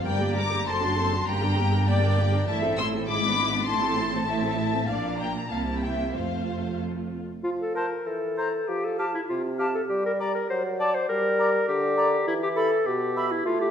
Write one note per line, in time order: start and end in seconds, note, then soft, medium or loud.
0.05 0.63 G1 medium
0.05 0.63 G2 medium
0.05 0.19 G3 soft
0.05 0.19 A#4 soft
0.05 0.35 D5 medium
0.05 0.36 G5 medium
0.20 0.36 A#3 soft
0.20 0.36 G4 soft
0.36 0.52 G3 soft
0.36 0.51 A#4 soft
0.36 0.67 A#5 medium
0.36 0.66 D6 medium
0.51 0.67 A#3 soft
0.51 0.67 G4 soft
0.66 1.27 F#1 medium
0.66 1.27 F#2 medium
0.66 0.81 C4 soft
0.66 0.81 A4 soft
0.66 1.27 A5 medium
0.66 1.27 C6 medium
0.82 0.97 D4 soft
0.82 0.97 F#4 soft
0.97 1.12 C4 soft
0.97 1.13 A4 soft
1.12 1.27 D4 soft
1.12 1.27 F#4 soft
1.27 2.45 G1 medium
1.27 2.46 G2 medium
1.27 1.42 A#3 soft
1.27 1.42 G4 medium
1.27 1.86 G5 medium
1.27 1.88 A#5 medium
1.43 1.58 D4 soft
1.43 1.58 A#4 soft
1.58 1.73 A#3 soft
1.58 1.73 G4 soft
1.73 1.88 D4 soft
1.73 1.88 A#4 soft
1.87 2.02 A#3 medium
1.87 2.01 G4 medium
1.87 2.47 D5 medium
1.87 2.48 G5 medium
2.02 2.18 D4 soft
2.02 2.18 A#4 soft
2.18 2.33 A#3 soft
2.18 2.33 G4 soft
2.34 2.48 D4 soft
2.34 2.48 A#4 soft
2.48 3.07 A1 medium
2.48 3.07 A2 medium
2.48 2.62 A3 medium
2.48 2.62 E4 medium
2.48 2.77 E5 medium
2.48 2.56 A5 medium
2.64 2.78 C4 soft
2.64 2.79 A4 soft
2.78 2.94 A3 soft
2.78 2.94 E4 soft
2.78 2.86 C6 medium
2.78 2.86 E6 medium
2.94 3.09 C4 soft
2.94 3.09 A4 soft
3.08 3.68 G#1 medium
3.08 3.68 G#2 medium
3.08 3.23 G#3 soft
3.08 3.23 E4 soft
3.08 3.67 B5 medium
3.08 3.67 D6 medium
3.24 3.39 B3 soft
3.24 3.39 D4 soft
3.39 3.54 G#3 soft
3.39 3.54 E4 soft
3.53 3.68 B3 soft
3.53 3.68 D4 soft
3.68 4.89 A1 medium
3.68 4.89 A2 medium
3.68 3.82 A3 soft
3.68 3.82 E4 soft
3.68 4.26 A5 medium
3.68 4.26 C6 medium
3.83 3.98 C4 soft
3.83 3.98 A4 soft
3.98 4.13 A3 soft
3.98 4.13 E4 soft
4.13 4.28 C4 soft
4.13 4.28 A4 soft
4.27 4.41 A3 soft
4.27 4.41 E4 soft
4.27 4.89 E5 medium
4.27 4.87 A5 medium
4.43 4.58 C4 soft
4.43 4.58 A4 soft
4.57 4.73 A3 soft
4.57 4.73 E4 soft
4.73 4.89 C4 soft
4.73 4.89 A4 soft
4.88 5.48 A#1 soft
4.88 5.48 A#2 soft
4.88 5.47 A#3 soft
4.88 5.47 D4 soft
4.88 5.20 D5 soft
4.88 5.20 F5 medium
5.20 5.29 G5 medium
5.20 5.51 A#5 medium
5.51 6.15 C2 soft
5.51 6.15 C3 soft
5.51 6.14 A#3 soft
5.51 6.16 E4 soft
5.51 5.60 F5 soft
5.51 5.84 A5 medium
5.82 6.16 E5 soft
5.82 6.15 G5 soft
6.16 7.23 F1 soft
6.16 7.24 F2 soft
6.16 7.23 A3 soft
6.16 7.21 F4 soft
6.16 6.80 C5 soft
6.16 6.79 F5 soft
7.44 7.96 F3 soft
7.44 7.51 F4 medium
7.61 7.74 A4 soft
7.75 8.08 A#4 soft
7.75 7.87 C5 soft
7.75 7.90 A5 soft
8.07 8.58 E3 soft
8.07 8.70 A4 soft
8.38 8.48 C5 soft
8.38 8.52 A#5 soft
8.68 9.19 F3 soft
8.68 8.86 G4 medium
8.85 8.99 A4 medium
8.99 9.06 G4 soft
8.99 9.10 F5 soft
8.99 9.13 A5 soft
9.15 9.21 E4 medium
9.29 9.80 C3 soft
9.29 9.43 F4 medium
9.59 9.66 G4 medium
9.59 9.70 F5 soft
9.59 9.74 A5 soft
9.75 9.82 A4 soft
9.89 10.40 G3 medium
9.89 10.04 G4 medium
10.06 10.12 A#4 medium
10.20 10.30 D5 soft
10.20 10.34 D5 medium
10.20 10.34 A#5 soft
10.35 10.50 A#4 medium
10.50 10.99 F#3 medium
10.50 10.63 C5 medium
10.80 10.96 D5 medium
10.80 10.90 D5 soft
10.80 10.93 A5 soft
10.95 11.09 C5 medium
11.09 11.59 G3 medium
11.09 11.67 A#4 medium
11.39 11.50 D5 medium
11.39 11.53 A#5 medium
11.68 12.18 D3 medium
11.68 12.26 G4 medium
11.97 12.08 D5 medium
11.97 12.11 A#5 medium
12.27 12.76 E3 medium
12.27 12.34 E4 medium
12.43 12.49 G4 medium
12.56 12.88 A4 medium
12.56 12.67 E5 medium
12.56 12.70 B5 medium
12.86 13.36 B2 medium
12.86 13.33 G4 medium
13.17 13.27 E5 medium
13.17 13.30 B5 soft
13.32 13.45 E4 medium
13.45 13.71 A3 medium
13.45 13.60 F4 medium
13.61 13.71 G4 medium